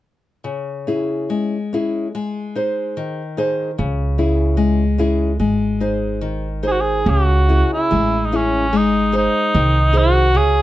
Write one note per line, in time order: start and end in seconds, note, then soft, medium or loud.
0.44 1.28 C#3 soft
0.87 1.56 C#4 soft
0.87 1.56 E4 soft
0.87 1.56 G#4 soft
1.30 2.12 G#3 soft
1.73 2.06 C#4 soft
1.73 2.07 E4 soft
1.73 2.07 G#4 soft
2.15 2.95 G#3 soft
2.55 3.21 D#4 soft
2.55 3.22 G#4 soft
2.55 3.21 C5 soft
2.97 3.76 D#3 soft
3.37 3.70 D#4 soft
3.37 3.70 G#4 soft
3.37 3.70 C5 soft
3.78 5.36 C#2 medium
3.78 4.56 C#3 soft
4.18 4.82 C#4 soft
4.18 4.83 E4 soft
4.18 4.83 G#4 soft
4.57 5.36 G#3 medium
4.98 5.31 C#4 soft
4.98 5.31 E4 soft
4.98 5.31 G#4 soft
5.40 7.03 G#1 medium
5.40 6.19 G#3 soft
5.80 6.47 D#4 soft
5.80 6.47 G#4 soft
5.80 6.47 C5 soft
6.21 7.03 D#3 soft
6.63 6.97 D#4 soft
6.63 6.97 G#4 soft
6.63 6.97 C5 soft
6.67 6.74 G#4 medium
6.72 6.82 F#4 medium
6.81 7.11 G#4 medium
7.06 7.61 C#2 medium
7.06 7.88 C#3 soft
7.06 7.72 F#4 medium
7.49 8.16 C#4 soft
7.49 8.16 E4 soft
7.49 8.16 G#4 soft
7.73 8.27 E4 medium
7.91 8.74 A1 medium
7.91 8.71 G#3 medium
8.25 8.37 D#4 soft
8.32 8.65 C#4 soft
8.32 8.78 C#4 medium
8.32 8.65 E4 soft
8.32 8.66 G#4 soft
8.73 9.26 G#1 medium
8.73 9.51 G#3 soft
8.73 9.15 D#4 medium
9.12 9.77 D#4 soft
9.12 9.78 G#4 soft
9.12 9.78 C5 soft
9.17 10.00 D#4 medium
9.54 10.36 C2 medium
9.54 10.33 D#3 medium
9.93 10.26 D#4 soft
9.93 10.26 G#4 soft
9.93 10.27 C5 medium
9.98 10.39 F#4 medium
10.35 10.62 C#2 medium
10.35 10.62 C#3 medium
10.35 10.62 G#4 medium